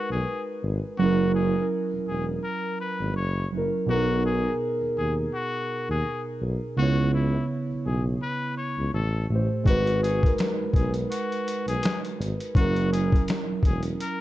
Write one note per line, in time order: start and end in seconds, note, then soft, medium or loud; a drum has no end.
0.00 1.00 G#3 medium
0.00 1.00 D#4 loud
0.00 1.00 F#4 loud
0.00 1.00 A#4 medium
0.00 1.01 B4 loud
0.10 0.24 B1 medium
0.10 0.44 G#4 medium
0.63 0.80 G#1 medium
0.99 1.61 F#1 loud
0.99 1.35 F#3 loud
0.99 1.36 C#4 loud
0.99 1.31 F#4 medium
1.03 1.37 E4 medium
1.03 1.38 A#4 loud
1.35 1.68 G#4 medium
1.56 2.50 F#3 medium
1.56 2.51 C#4 medium
1.56 2.52 E4 medium
1.62 2.53 A#4 medium
1.92 1.98 E1 soft
2.07 2.38 E1 medium
2.07 2.26 G#4 medium
2.44 2.82 A#4 medium
2.81 3.13 B4 medium
3.00 3.17 G#1 medium
3.16 3.47 F#1 loud
3.16 3.49 C#5 medium
3.52 3.69 F#1 medium
3.52 3.77 F#3 medium
3.52 3.78 C#4 medium
3.52 3.79 E4 medium
3.57 3.80 A#4 medium
3.86 4.50 B1 loud
3.86 4.23 B2 loud
3.86 4.24 B3 medium
3.86 4.25 D#4 loud
3.86 4.21 F#4 loud
3.91 4.26 A#4 loud
4.26 4.57 G#4 medium
4.41 5.37 B2 medium
4.41 5.38 B3 medium
4.41 5.39 D#4 medium
4.47 5.40 G#4 medium
4.81 4.87 D#2 soft
4.97 5.27 D#2 medium
4.97 5.15 G#4 medium
5.35 5.86 F#4 medium
5.89 6.03 D#2 medium
5.89 6.22 G#4 medium
6.41 6.58 B1 medium
6.77 7.39 C#2 loud
6.77 7.13 C#3 loud
6.77 7.14 B3 loud
6.77 7.15 E4 medium
6.77 7.10 F#4 loud
6.82 7.16 C#5 loud
7.14 7.46 E4 medium
7.31 8.27 C#3 medium
7.31 8.28 B3 medium
7.31 8.29 E4 medium
7.37 8.30 C#5 medium
7.70 7.76 B1 soft
7.86 8.16 B1 medium
7.86 8.04 G#4 medium
8.22 8.55 B4 medium
8.58 8.90 C#5 medium
8.78 8.92 C#2 medium
8.94 9.25 A1 loud
8.94 9.27 A4 medium
9.29 9.47 A1 medium
9.29 9.55 A2 medium
9.29 9.56 A3 medium
9.29 9.57 G4 medium
9.35 9.58 C5 medium
9.63 10.28 G#1 loud
9.63 10.01 G#3 medium
9.63 10.02 D#4 medium
9.63 9.99 F#4 loud
9.63 kick medium
9.63 closed hi-hat medium
9.67 10.03 F#4 medium
9.67 10.04 B4 loud
9.87 closed hi-hat soft
10.03 10.35 G#4 medium
10.03 closed hi-hat medium
10.20 11.16 G#3 medium
10.20 11.17 D#4 medium
10.20 11.18 F#4 medium
10.20 kick loud
10.26 11.19 A#4 medium
10.26 closed hi-hat soft
10.38 finger snap medium
10.38 snare loud
10.38 closed hi-hat medium
10.58 10.65 B1 soft
10.73 11.05 B1 medium
10.73 10.93 G#4 medium
10.73 kick medium
10.73 closed hi-hat medium
10.94 closed hi-hat medium
11.11 11.64 F#4 medium
11.11 closed hi-hat medium
11.32 closed hi-hat soft
11.48 closed hi-hat medium
11.67 11.81 B1 medium
11.67 12.00 G#4 medium
11.67 closed hi-hat medium
11.83 finger snap medium
11.83 snare loud
11.83 closed hi-hat medium
12.05 closed hi-hat soft
12.19 12.36 G#1 medium
12.19 closed hi-hat medium
12.40 closed hi-hat soft
12.55 13.17 F#1 loud
12.55 12.91 F#3 loud
12.55 12.92 C#4 medium
12.55 12.93 E4 medium
12.55 12.89 F#4 loud
12.55 kick loud
12.55 closed hi-hat medium
12.60 12.94 A#4 loud
12.76 closed hi-hat soft
12.93 13.25 G#4 medium
12.93 closed hi-hat medium
13.12 14.06 F#3 medium
13.12 14.07 C#4 medium
13.12 14.08 E4 medium
13.12 kick loud
13.12 closed hi-hat soft
13.18 14.09 A#4 medium
13.28 finger snap medium
13.28 snare loud
13.28 closed hi-hat medium
13.48 13.54 E1 soft
13.63 13.94 E1 medium
13.63 13.83 G#4 medium
13.63 kick medium
13.63 closed hi-hat medium
13.83 closed hi-hat medium
14.00 14.21 A#4 medium
14.00 closed hi-hat medium